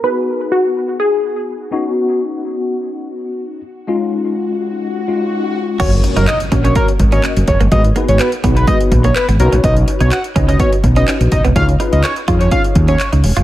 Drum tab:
CC |----------------|----------------|----------------|x---------------|
HH |----------------|----------------|----------------|xxxxxxxxxxxxxxxx|
CP |----------------|----------------|----------------|----x-------x---|
BD |----------------|----------------|----------------|o-----o-o-o---o-|

CC |----------------|----------------|----------------|
HH |xxxxxxxxxxxxxxxx|xxxxxxxxxxxxxxxx|xxxxxxxxxxxxxxox|
CP |----x-------x---|----x-------x---|----x-------x---|
BD |o-----o-o-o-----|o-----o-o-o---o-|o-----o-o-o-----|